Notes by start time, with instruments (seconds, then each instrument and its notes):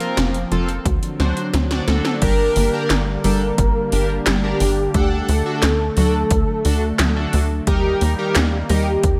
Already playing: analog synth pad F3 A#3 C4, synth arpeggio sound A#3
0.00 analog polysynth C4 F4 A#4, closed hi-hat
0.17 analog synth bass F1, synth arpeggio sound C4, snare, closed hi-hat
0.34 closed hi-hat
0.52 analog synth bass F1, synth arpeggio sound F3, analog polysynth C4 F4 A4, closed hi-hat
0.69 closed hi-hat
0.86 analog synth bass D2, analog synth pad D3 F#3, synth arpeggio sound F#4, kick, closed hi-hat
1.03 closed hi-hat
1.20 analog synth bass D2, synth arpeggio sound F#3, analog polysynth D4 F#4 C5, snare, closed hi-hat
1.37 closed hi-hat
1.54 analog synth bass D2, synth arpeggio sound C4, snare, closed hi-hat
1.71 analog polysynth D4 F#4 D5, snare, closed hi-hat
1.88 analog synth bass D2, synth arpeggio sound A3, analog polysynth D4 F#4 A4, snare, closed hi-hat
2.05 snare, closed hi-hat
2.22 analog synth bass G1, analog synth pad D3 G3 A#3, synth arpeggio sound G3, analog polysynth D4 G4 A#4, analog synth lead A#4, kick, closed hi-hat, crash
2.56 analog synth bass G1, synth arpeggio sound A#3, open hi-hat
2.73 analog polysynth D4 G4 A#4
2.90 analog synth bass G1, synth arpeggio sound D4, snare, clap, closed hi-hat
3.24 analog synth bass G1, synth arpeggio sound G3, analog polysynth D4 G4 A4, analog synth lead A#4, open hi-hat
3.58 analog synth bass G1, synth arpeggio sound A#4, kick, closed hi-hat
3.92 analog synth bass G1, synth arpeggio sound D4, analog polysynth D4 G4 A#4, open hi-hat
4.26 analog synth bass G1, synth arpeggio sound G3, analog synth lead G4, snare, clap, closed hi-hat
4.44 analog polysynth D4 G4 A#4
4.60 analog synth bass G1, synth arpeggio sound G4, open hi-hat
4.94 analog synth bass D2, synth arpeggio sound A3, analog synth pad A3, analog polysynth D4 A4 F#5, kick, closed hi-hat
5.29 analog synth bass D2, synth arpeggio sound A3, analog synth lead A4, open hi-hat
5.46 analog polysynth D4 F#4 A4
5.62 analog synth bass D2, synth arpeggio sound D4, snare, clap, closed hi-hat
5.97 analog synth bass D2, synth arpeggio sound F#3, analog polysynth D4 F#4 A4, open hi-hat
6.31 analog synth bass D2, synth arpeggio sound A4, kick, closed hi-hat
6.65 analog synth bass D2, synth arpeggio sound D4, analog polysynth D4 F#4 A4, open hi-hat
6.99 analog synth bass D2, synth arpeggio sound F#3, snare, clap, closed hi-hat
7.16 analog polysynth D4 F#4 A4
7.33 analog synth bass D2, synth arpeggio sound F#4, open hi-hat
7.67 analog synth bass D#2, analog synth pad D#3 G3 A#3, synth arpeggio sound G3, analog polysynth D#4 G4 A#4, analog synth lead G4, kick, closed hi-hat
8.01 analog synth bass D#2, synth arpeggio sound A#3, open hi-hat
8.18 analog polysynth D#4 G4 A#4
8.35 analog synth bass D#2, synth arpeggio sound D#4, snare, clap, closed hi-hat
8.69 analog synth bass D#2, synth arpeggio sound G3, analog polysynth D#4 G4 A#4, analog synth lead G4, open hi-hat
9.03 analog synth bass D#2, synth arpeggio sound A#4, kick, closed hi-hat